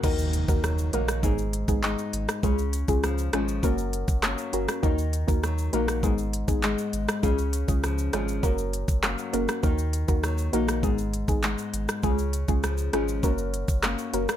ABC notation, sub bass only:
X:1
M:4/4
L:1/16
Q:1/4=100
K:Ebm
V:1 name="Sub bass" clef=bass
E,,3 E,,3 B,,,2 A,,,3 A,,,2 z A,,, z | D,,3 D,,3 A,,,2 G,,,3 G,,,2 z G,,, z | E,,3 E,,3 B,,,2 A,,,3 A,,,2 z A,,, z | D,,3 D,,3 A,,,2 G,,,3 G,,,2 z G,,, z |
E,,3 E,,3 B,,,2 A,,,3 A,,,2 z A,,, z | D,,3 D,,3 A,,,2 G,,,3 G,,,2 z G,,, z |]